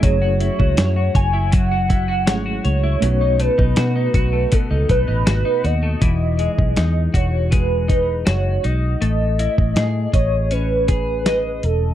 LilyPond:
<<
  \new Staff \with { instrumentName = "Soft synth lead" } { \time 4/4 \key e \major \tempo 4 = 80 cis''4. gis''8 fis''4. cis''8~ | cis''8 b'4. a'8 b'4 dis''8~ | dis''4. cis''8 b'8 b'8 cis''8 dis''8~ | dis''8 dis''4 cis''8 b'4. a'8 | }
  \new Staff \with { instrumentName = "Clean electric guitar" } { \time 4/4 \key e \major fis16 fis'16 e'16 fis'16 cis''16 fis'16 cis''16 e'16 fis16 fis'16 e'16 fis'16 cis''16 fis'16 cis''16 e'16 | b,16 dis'16 a16 dis'16 fis'16 dis'16 fis'16 a16 b,16 dis'16 a16 dis'16 fis'16 dis'16 fis'16 a16 | e8 gis8 dis'8 fis'8 gis8 dis'8 fis'8 dis'8 | a8 e'8 gis'8 dis''8 cis'8 gis'8 dis''4 | }
  \new Staff \with { instrumentName = "Reed electric piano" } { \time 4/4 \key e \major <a cis' e' gis'>2. <gis a cis' e' gis'>4 | <a cis' dis' fis'>1 | r1 | r1 | }
  \new Staff \with { instrumentName = "Fingered electric bass" } { \clef bass \time 4/4 \key e \major fis,,8. cis,16 fis,8 fis,,4. gis,,8 cis,8 | b,,8. b,,16 b,8 b,,8 r16 cis,16 b,,16 a,,16 gis,,16 r16 dis,8 | e,,8. b,,16 e,8 e,,4. fis,,8 b,,8 | a,,8. a,,16 a,8 a,,2 e,,8 | }
  \new DrumStaff \with { instrumentName = "Drums" } \drummode { \time 4/4 <hh bd>8 hh16 bd16 <hh sn>8 <hh bd>8 <hh bd>8 <hh bd>8 <hh sn>8 hh8 | hh8 hh16 bd16 <hh sn>8 <hh bd>8 <hh bd>8 <hh bd>8 <hh sn>8 hh8 | <hh bd>8 hh16 bd16 <hh sn>8 <hh bd>8 <hh bd>8 <hh bd>8 <hh sn>8 hh8 | hh8 hh16 bd16 <hh sn>8 <hh bd>8 hh8 <hh bd>8 <hh sn>8 hh8 | }
>>